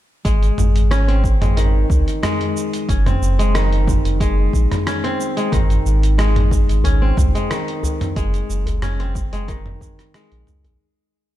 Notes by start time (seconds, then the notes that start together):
0.25 G#1 G#3, kick, closed hi-hat, shaker
0.43 closed hi-hat, shaker
0.58 G#1, mid tom, shaker
0.76 closed hi-hat, shaker
0.91 C#4, cross-stick, closed hi-hat, shaker
1.08 C4, closed hi-hat
1.24 kick, shaker
1.41 G#1 G#3, closed hi-hat, mid tom, shaker
1.57 D#3, closed hi-hat, shaker
1.90 C#2, kick, shaker
2.08 closed hi-hat, shaker
2.23 G#3, cross-stick, closed hi-hat, mid tom, shaker
2.41 closed hi-hat
2.57 shaker
2.73 closed hi-hat, shaker
2.89 F#1 C#4, kick, closed hi-hat, shaker
3.06 C4, closed hi-hat, mid tom, shaker
3.21 F#1, shaker
3.39 G#3, closed hi-hat, shaker
3.55 D#3, cross-stick, closed hi-hat, shaker
3.72 closed hi-hat
3.88 kick, mid tom, shaker
4.05 F#1, closed hi-hat, shaker
4.20 G#3, kick, closed hi-hat, shaker
4.53 A#1, kick, shaker
4.71 cross-stick, closed hi-hat, mid tom, shaker
4.86 C#4, cross-stick, closed hi-hat, shaker
5.04 C4, closed hi-hat
5.21 shaker
5.37 G#3, closed hi-hat, shaker
5.52 G#1 D#3, kick, closed hi-hat, mid tom, shaker
5.70 closed hi-hat, shaker
5.86 G#1, shaker
6.03 closed hi-hat, shaker
6.18 G#3, cross-stick, closed hi-hat, djembe slap, shaker
6.36 closed hi-hat, mid tom, djembe slap
6.51 kick, djembe tone, shaker
6.69 G#1, closed hi-hat, shaker
6.84 C#4, closed hi-hat, djembe tone, djembe bass, shaker
7.02 C4
7.17 C#2, kick, mid tom, djembe slap, shaker
7.35 G#3, closed hi-hat, shaker
7.50 D#3, cross-stick, closed hi-hat, shaker
7.68 closed hi-hat
7.83 djembe bass, shaker
8.01 closed hi-hat, mid tom, djembe slap, shaker
8.16 F#1 G#3, kick, closed hi-hat, shaker
8.34 closed hi-hat, shaker
8.49 F#1, shaker
8.66 closed hi-hat, djembe bass, shaker
8.82 C#4, cross-stick, closed hi-hat, mid tom, djembe slap, shaker
9.00 C4, closed hi-hat, djembe slap
9.15 kick, djembe tone, shaker
9.32 F#1 G#3, closed hi-hat, shaker
9.48 D#3, kick, closed hi-hat, shaker
9.66 mid tom
9.81 kick, djembe slap, djembe tone, shaker
9.99 cross-stick, closed hi-hat, shaker
10.14 G#3, cross-stick, closed hi-hat, shaker
10.32 A#1, closed hi-hat
10.47 C#2, mid tom, shaker
10.64 A#1, closed hi-hat, djembe slap, djembe bass, shaker